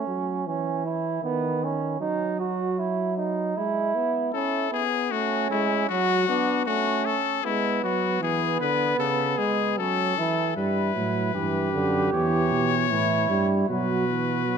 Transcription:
Already playing: C#4
0.07 F#3
0.46 E3 C#4
0.85 E4
1.22 D#3 B3
1.64 C#4
2.00 F#3 D#4
2.40 F#4
2.79 E4
3.17 D#4
3.56 G#3 E4
3.95 B3
4.34 C#4 E4 A4
4.72 B3 G#4
5.11 A3 C#4 F#4
5.50 G#3 E4
5.89 F#3 F#4
6.27 B3 D4
6.65 A3 C#4 F#4
7.05 A4
7.44 G#3 B3 E4
7.83 F#3 F#4
8.21 E3 B3 G#4
8.60 D3 B4
8.98 C#3 A4
9.38 G#3 G#4
9.77 F#3 C#4 A4
10.17 E3 E4
10.56 G2 G3 E4 B4
10.95 A2 F#3
11.34 G2 E3 G4
11.73 F#2 D3
12.12 E2 E3 C#5
12.51 B2
12.90 A2 E3 E4
13.29 G2 G3
13.68 B2 F#3 F#4 B4
14.08 E3
14.46 F#3

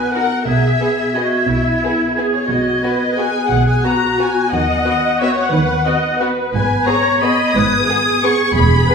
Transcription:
Already playing: B3 B4 G#5 F#6
0.13 D#4 F#4 A#4 F#5
0.47 B1 B2 B3 G#4 E5 G#6
0.80 B3 G#4
1.15 B3 F#4 G#4 D#5
1.32 E5
1.48 B1 B2 E4
1.83 B3 G#4
2.17 B3 G#4
2.33 C#5
2.49 B1 B2 B3 F#4 D#5
2.83 B3 F#4 B4
3.18 B3 F#4 G#4 G#5 F#6
3.51 B1 B2 F#5
3.67 G#5
3.84 B3 F#4 A#5
4.18 B3 F#4 G#5
4.52 D#2 D#3 B3 D#5 F#5 F#6
4.85 B3 F#4
5.21 B3 F#4 C#5 E5
5.37 F#5
5.53 D#2 D#3 B4
5.86 B3 F#4 D#5
6.21 B3 F#4 B4
6.54 G#1 G#2 B3 G#5 G#6
6.86 B3 G#4 C#5 A#5
7.21 B3 G#4 D#5 B5
7.54 G#1 G#2 B4 D#6
7.88 B3 G#4
8.23 B3 G#4 C#6
8.55 E1 E2 B3 B5 G#6
8.89 B3 G#4 B4

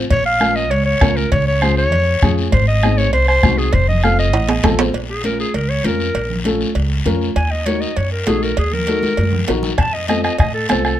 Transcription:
0.10 A#1 C#5, bombo low, cowbell, long guiro
0.26 F5
0.40 C#4 F4 A#4, bombo rim, high conga, short guiro
0.56 D#5, short guiro
0.71 C#2 C#5, cowbell, long guiro
0.85 C#5
1.01 C#2 C#4 F4 A#4, bombo low, bombo rim, high conga, low timbale, short guiro
1.16 A#4, short guiro
1.32 C#2 C#5, bombo low, cowbell, long guiro
1.47 C#5
1.62 C#4 F4 G#4 C5, bombo rim, high conga, short guiro
1.77 C#5, short guiro
1.92 F2, cowbell, long guiro
2.22 F2 C#4 F4 G#4, bombo low, bombo rim, high conga, low conga, short guiro
2.38 short guiro
2.52 G#1 C5, bombo low, cowbell, long guiro
2.68 D#5
2.83 C4 D#4 G#4, bombo rim, high conga, short guiro
2.98 C#5, short guiro
3.13 C2 C5, cowbell, long guiro
3.28 C5, bombo rim
3.43 C2 C4 D#4 F#4, bombo low, bombo rim, high conga, short guiro
3.58 G#4, short guiro
3.73 F1 C5, bombo low, cowbell, long guiro
3.88 D#5, low conga
4.03 C4 F4 A4 F5, bombo rim, high conga, short guiro
4.19 D#5, short guiro
4.33 A1, cowbell, high timbale, long guiro
4.49 bombo rim, low timbale
4.64 A1 C4 F4 A4 A5, bombo low, bombo rim, high conga, low conga, low timbale, short guiro
4.79 C5, low timbale, short guiro
4.93 A#1, cowbell, high conga, long guiro
5.10 G#4
5.24 C#4 F4 A#4, cowbell, high conga, short guiro
5.40 G#4, short guiro
5.54 C#2 A#4, cowbell, high conga, long guiro
5.69 C#5
5.84 F2 C#4 F4 A#4, cowbell, high conga, short guiro
6.00 short guiro
6.15 A#1, cowbell, high conga, long guiro
6.30 low conga
6.45 C#4 F4 A4, cowbell, high conga, short guiro
6.61 short guiro
6.75 C#2, cowbell, high conga, long guiro
7.06 F2 C#4 F4 A#4, cowbell, high conga, low conga, short guiro
7.21 short guiro
7.36 D#2 G#5, cowbell, high conga, long guiro
7.51 D#5
7.66 D#4 F#4 A#4 C#5, cowbell, high conga, short guiro
7.81 D#5, short guiro
7.97 F#2 C#5, cowbell, high conga, long guiro
8.12 A#4
8.27 A#1 D#4 F#4 G#4 A4, cowbell, high conga, low timbale, short guiro
8.43 A#4, short guiro
8.57 D#2 G#4, cowbell, high conga, long guiro
8.73 A#4, low conga
8.87 D#4 F#4 A4, cowbell, high conga, short guiro
9.03 high conga, short guiro
9.17 F#2, cowbell, high conga, long guiro
9.33 low conga
9.48 A#1 D#4 F#4 A#4, cowbell, low conga, low timbale, short guiro
9.63 low conga, short guiro
9.78 F2 A5, bombo low, bombo rim, cowbell, high conga, long guiro
9.94 D#5
10.08 C4 F4 A4 D#5, bombo rim, cowbell, high conga, short guiro
10.23 D#5, bombo rim, short guiro
10.38 A2 D#5, bombo low, bombo rim, cowbell, high conga, long guiro
10.54 A4
10.69 C2 C4 F4 A4 C5, bombo rim, cowbell, high conga, low timbale, short guiro
10.85 A4, bombo rim, short guiro

